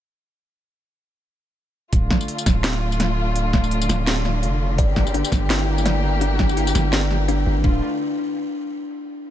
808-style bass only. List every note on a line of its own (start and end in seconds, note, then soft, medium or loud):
1.93 2.09 D1 loud
2.46 3.88 D1 loud
3.89 4.44 D1 loud
4.43 4.80 F1 medium
4.78 5.23 G1 loud
5.32 6.74 G1 loud
6.75 7.46 G1 loud
7.46 7.58 G1 medium
7.57 7.64 A1 medium
7.64 7.81 D1 medium